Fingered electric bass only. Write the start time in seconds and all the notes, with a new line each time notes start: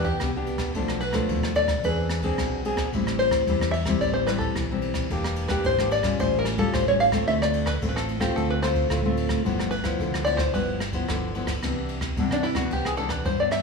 Already playing: E2
0.21 C2
0.75 B1
1.29 D#2
1.84 E2
2.39 B1
2.93 A1
3.47 E2
4.01 A1
4.56 B1
5.10 E1
5.64 G#1
6.19 A1
6.74 A1
7.28 D2
7.83 A1
8.37 D2
8.91 D2
9.46 G1
10.00 D2
10.54 G1
11.09 G1
11.63 C2
12.17 C3
12.71 C2
13.25 G2